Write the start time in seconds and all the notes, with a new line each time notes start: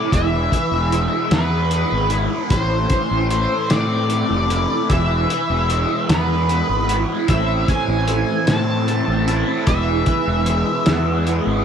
Already playing: E3 A3 C4 E4 D5
0.12 E1 E3 E5, kick, closed hi-hat
0.52 E3, kick, closed hi-hat
0.71 E1
0.92 G#3, closed hi-hat
1.31 E2 B3 B4, snare, closed hi-hat
1.71 G#3, closed hi-hat
1.92 G#1
2.10 E4, closed hi-hat
2.50 A1 A2 C5, kick, closed hi-hat
2.89 E3, kick, closed hi-hat
3.11 A1
3.30 A3 C5, closed hi-hat
3.69 A2 C4 D5, snare, closed hi-hat
4.10 A3, closed hi-hat
4.30 F1
4.50 E4, closed hi-hat
4.90 E1 E3 E5, kick, closed hi-hat
5.29 E3, closed hi-hat
5.50 E1
5.69 G#3, closed hi-hat
6.09 E2 B3 B4, snare, closed hi-hat
6.48 G#3, closed hi-hat
6.69 G#1
6.88 E4, closed hi-hat
7.28 A1 A2 A3 C4 E4 C5 E5, kick, closed hi-hat
7.68 E3 G#5, kick, closed hi-hat
7.88 A1
8.08 A3, closed hi-hat
8.47 A2 C4 A5, snare, closed hi-hat
8.87 A3, closed hi-hat
9.08 A1
9.27 E4, closed hi-hat
9.67 E1 E3 G#3 B3 B4 E5, kick, closed hi-hat
10.06 E3, kick, closed hi-hat
10.27 E1
10.46 G#3, closed hi-hat
10.86 E2 B3, snare, closed hi-hat
11.26 G#3, closed hi-hat
11.47 G#1